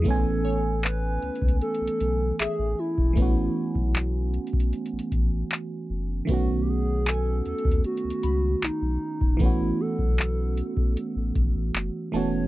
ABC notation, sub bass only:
X:1
M:4/4
L:1/16
Q:1/4=77
K:A
V:1 name="Sub bass" clef=bass
A,,,6 C,, C,, z B,,, B,,,2 A,,, A,,, z E,,, | A,,,2 z B,,,4 z2 A,,, A,,,2 z2 F,,,2 | B,,,6 ^D,, D,, z C,, C,,2 B,,, B,,, z E,,, | A,,,2 z B,,,4 z2 A,,, G,,, A,,, F,,, z E,,,2 |]